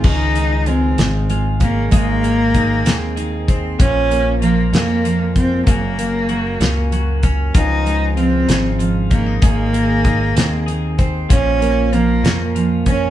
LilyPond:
<<
  \new Staff \with { instrumentName = "Clean electric guitar" } { \time 6/8 \key des \major \tempo 4. = 64 <ees f'>8 aes8 f'4 f'8 des'8 | <ees aes'>8 bes8 aes'8 c'8 aes'8 c'8 | <f f'>8 bes8 f'8 des'8 f'4 | <bes ges'>8 bes8 ges'8 des'8 ges'8 des'8 |
<f f'>8 aes8 f'8 ees'8 f'8 des'16 ees'16 | <ees aes'>8 bes8 aes'8 c'8 aes'8 c'8 | <f f'>8 bes8 f'8 des'8 f'8 des'8 | }
  \new Staff \with { instrumentName = "Cello" } { \time 6/8 \key des \major ees'4 c'4 r8 bes8 | bes2~ bes8 r8 | des'4 bes8 bes4 c'8 | bes2~ bes8 r8 |
ees'4 c'4 r8 bes8 | bes2~ bes8 r8 | des'4 bes4 r8 des'8 | }
  \new Staff \with { instrumentName = "Steel-string acoustic guitar" } { \time 6/8 \key des \major des8 ees'8 aes8 ees'8 aes8 f'8 | aes8 aes'8 ees'8 aes'8 ees'8 c''8 | bes,8 bes8 f8 bes8 f4 | ges,8 bes8 ges8 bes8 ges8 des'8 |
des8 aes8 f8 aes8 f8 ees'8 | aes8 aes'8 ees'8 aes'8 ees'8 c''8 | bes,8 bes8 f8 bes8 f8 des'8 | }
  \new Staff \with { instrumentName = "Fingered electric bass" } { \clef bass \time 6/8 \key des \major des,4. aes,,4. | aes,,4. ees,4. | bes,,4. f,4. | ges,,4. des,4. |
des,4. aes,,4. | aes,,4. ees,4. | bes,,4. f,4. | }
  \new DrumStaff \with { instrumentName = "Drums" } \drummode { \time 6/8 <cymc bd>8 hh8 hh8 <hh sn>8 hh8 <hh bd>8 | <hh bd>8 hh8 <hh bd>8 <hh sn>8 hh8 <hh bd>8 | <hh bd>8 hh8 hh8 <hh sn>8 hh8 <hh bd>8 | <hh bd>8 hh8 hh8 <hh sn>8 hh8 <hh bd>8 |
<hh bd>8 hh8 hh8 <hh sn>8 hh8 <hh bd>8 | <hh bd>8 hh8 <hh bd>8 <hh sn>8 hh8 <hh bd>8 | <hh bd>8 hh8 hh8 <hh sn>8 hh8 <hh bd>8 | }
>>